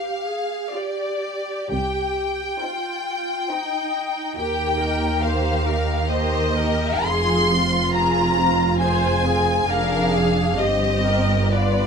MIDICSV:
0, 0, Header, 1, 6, 480
1, 0, Start_track
1, 0, Key_signature, -3, "minor"
1, 0, Tempo, 921659
1, 380, Tempo, 990099
1, 860, Time_signature, 3, 2, 24, 8
1, 860, Tempo, 888889
1, 1820, Tempo, 864553
1, 3260, Tempo, 961538
1, 3740, Tempo, 882353
1, 5660, Tempo, 967742
1, 6298, End_track
2, 0, Start_track
2, 0, Title_t, "Violin section"
2, 0, Program_c, 0, 48
2, 0, Note_on_c, 0, 77, 52
2, 376, Note_on_c, 0, 74, 52
2, 377, Note_off_c, 0, 77, 0
2, 857, Note_on_c, 0, 79, 63
2, 858, Note_off_c, 0, 74, 0
2, 2277, Note_off_c, 0, 79, 0
2, 2299, Note_on_c, 0, 79, 69
2, 2767, Note_off_c, 0, 79, 0
2, 2781, Note_on_c, 0, 77, 64
2, 3252, Note_on_c, 0, 75, 68
2, 3261, Note_off_c, 0, 77, 0
2, 3736, Note_off_c, 0, 75, 0
2, 3741, Note_on_c, 0, 84, 77
2, 4216, Note_on_c, 0, 82, 75
2, 4218, Note_off_c, 0, 84, 0
2, 4680, Note_off_c, 0, 82, 0
2, 4685, Note_on_c, 0, 80, 77
2, 5160, Note_off_c, 0, 80, 0
2, 5173, Note_on_c, 0, 77, 77
2, 5659, Note_off_c, 0, 77, 0
2, 5668, Note_on_c, 0, 75, 72
2, 6129, Note_on_c, 0, 74, 64
2, 6135, Note_off_c, 0, 75, 0
2, 6298, Note_off_c, 0, 74, 0
2, 6298, End_track
3, 0, Start_track
3, 0, Title_t, "Viola section"
3, 0, Program_c, 1, 48
3, 0, Note_on_c, 1, 67, 41
3, 137, Note_off_c, 1, 67, 0
3, 143, Note_on_c, 1, 68, 38
3, 382, Note_off_c, 1, 68, 0
3, 384, Note_on_c, 1, 67, 45
3, 1341, Note_on_c, 1, 65, 43
3, 1343, Note_off_c, 1, 67, 0
3, 1810, Note_off_c, 1, 65, 0
3, 1825, Note_on_c, 1, 63, 46
3, 2303, Note_on_c, 1, 67, 50
3, 2304, Note_off_c, 1, 63, 0
3, 2539, Note_off_c, 1, 67, 0
3, 2543, Note_on_c, 1, 70, 49
3, 2779, Note_off_c, 1, 70, 0
3, 2785, Note_on_c, 1, 72, 52
3, 3019, Note_on_c, 1, 70, 48
3, 3021, Note_off_c, 1, 72, 0
3, 3261, Note_off_c, 1, 70, 0
3, 3269, Note_on_c, 1, 72, 57
3, 3496, Note_off_c, 1, 72, 0
3, 3498, Note_on_c, 1, 70, 52
3, 3740, Note_off_c, 1, 70, 0
3, 3742, Note_on_c, 1, 68, 55
3, 3984, Note_off_c, 1, 68, 0
3, 3987, Note_on_c, 1, 65, 61
3, 4692, Note_off_c, 1, 65, 0
3, 4695, Note_on_c, 1, 72, 59
3, 4933, Note_off_c, 1, 72, 0
3, 4941, Note_on_c, 1, 68, 56
3, 5177, Note_off_c, 1, 68, 0
3, 5178, Note_on_c, 1, 70, 58
3, 5412, Note_off_c, 1, 70, 0
3, 5414, Note_on_c, 1, 68, 57
3, 5654, Note_on_c, 1, 67, 53
3, 5659, Note_off_c, 1, 68, 0
3, 5887, Note_off_c, 1, 67, 0
3, 5888, Note_on_c, 1, 70, 49
3, 6124, Note_off_c, 1, 70, 0
3, 6130, Note_on_c, 1, 71, 43
3, 6298, Note_off_c, 1, 71, 0
3, 6298, End_track
4, 0, Start_track
4, 0, Title_t, "Violin section"
4, 0, Program_c, 2, 48
4, 0, Note_on_c, 2, 65, 36
4, 0, Note_on_c, 2, 74, 36
4, 261, Note_off_c, 2, 74, 0
4, 262, Note_off_c, 2, 65, 0
4, 376, Note_on_c, 2, 65, 40
4, 377, Note_on_c, 2, 74, 40
4, 744, Note_off_c, 2, 65, 0
4, 744, Note_off_c, 2, 74, 0
4, 1339, Note_on_c, 2, 63, 43
4, 1339, Note_on_c, 2, 72, 43
4, 1701, Note_off_c, 2, 63, 0
4, 1701, Note_off_c, 2, 72, 0
4, 1823, Note_on_c, 2, 72, 44
4, 1827, Note_on_c, 2, 63, 46
4, 2185, Note_off_c, 2, 72, 0
4, 2187, Note_off_c, 2, 63, 0
4, 2303, Note_on_c, 2, 70, 42
4, 2304, Note_on_c, 2, 67, 45
4, 2522, Note_off_c, 2, 70, 0
4, 2523, Note_off_c, 2, 67, 0
4, 2543, Note_on_c, 2, 67, 38
4, 2544, Note_on_c, 2, 63, 38
4, 2770, Note_off_c, 2, 67, 0
4, 2777, Note_on_c, 2, 67, 40
4, 2779, Note_on_c, 2, 70, 40
4, 2780, Note_off_c, 2, 63, 0
4, 3012, Note_off_c, 2, 67, 0
4, 3018, Note_off_c, 2, 70, 0
4, 3019, Note_on_c, 2, 67, 37
4, 3021, Note_on_c, 2, 63, 40
4, 3256, Note_off_c, 2, 67, 0
4, 3261, Note_off_c, 2, 63, 0
4, 3263, Note_on_c, 2, 67, 43
4, 3263, Note_on_c, 2, 70, 44
4, 3481, Note_off_c, 2, 67, 0
4, 3482, Note_off_c, 2, 70, 0
4, 3504, Note_on_c, 2, 63, 43
4, 3504, Note_on_c, 2, 67, 45
4, 3738, Note_on_c, 2, 68, 49
4, 3739, Note_on_c, 2, 65, 48
4, 3743, Note_off_c, 2, 63, 0
4, 3743, Note_off_c, 2, 67, 0
4, 3965, Note_off_c, 2, 68, 0
4, 3966, Note_off_c, 2, 65, 0
4, 3994, Note_on_c, 2, 65, 43
4, 3998, Note_on_c, 2, 60, 42
4, 4217, Note_off_c, 2, 65, 0
4, 4223, Note_on_c, 2, 68, 46
4, 4224, Note_on_c, 2, 65, 49
4, 4225, Note_off_c, 2, 60, 0
4, 4448, Note_off_c, 2, 65, 0
4, 4453, Note_on_c, 2, 60, 42
4, 4454, Note_on_c, 2, 65, 43
4, 4455, Note_off_c, 2, 68, 0
4, 4686, Note_off_c, 2, 65, 0
4, 4690, Note_off_c, 2, 60, 0
4, 4693, Note_on_c, 2, 65, 49
4, 4694, Note_on_c, 2, 68, 50
4, 4915, Note_off_c, 2, 65, 0
4, 4916, Note_off_c, 2, 68, 0
4, 4935, Note_on_c, 2, 60, 45
4, 4936, Note_on_c, 2, 65, 43
4, 5170, Note_on_c, 2, 62, 54
4, 5170, Note_on_c, 2, 68, 51
4, 5174, Note_off_c, 2, 60, 0
4, 5174, Note_off_c, 2, 65, 0
4, 5636, Note_off_c, 2, 62, 0
4, 5636, Note_off_c, 2, 68, 0
4, 5654, Note_on_c, 2, 60, 50
4, 5654, Note_on_c, 2, 67, 51
4, 6118, Note_off_c, 2, 67, 0
4, 6128, Note_off_c, 2, 60, 0
4, 6128, Note_on_c, 2, 59, 47
4, 6128, Note_on_c, 2, 65, 47
4, 6298, Note_off_c, 2, 59, 0
4, 6298, Note_off_c, 2, 65, 0
4, 6298, End_track
5, 0, Start_track
5, 0, Title_t, "Cello section"
5, 0, Program_c, 3, 48
5, 853, Note_on_c, 3, 48, 50
5, 1246, Note_off_c, 3, 48, 0
5, 2296, Note_on_c, 3, 39, 50
5, 3717, Note_off_c, 3, 39, 0
5, 3736, Note_on_c, 3, 41, 57
5, 5148, Note_off_c, 3, 41, 0
5, 5167, Note_on_c, 3, 41, 53
5, 5635, Note_off_c, 3, 41, 0
5, 5654, Note_on_c, 3, 43, 51
5, 6298, Note_off_c, 3, 43, 0
5, 6298, End_track
6, 0, Start_track
6, 0, Title_t, "Double bass section"
6, 0, Program_c, 4, 48
6, 858, Note_on_c, 4, 36, 47
6, 1248, Note_off_c, 4, 36, 0
6, 2303, Note_on_c, 4, 39, 48
6, 3720, Note_off_c, 4, 39, 0
6, 3741, Note_on_c, 4, 29, 52
6, 5151, Note_off_c, 4, 29, 0
6, 5172, Note_on_c, 4, 29, 52
6, 5637, Note_off_c, 4, 29, 0
6, 5659, Note_on_c, 4, 31, 53
6, 6298, Note_off_c, 4, 31, 0
6, 6298, End_track
0, 0, End_of_file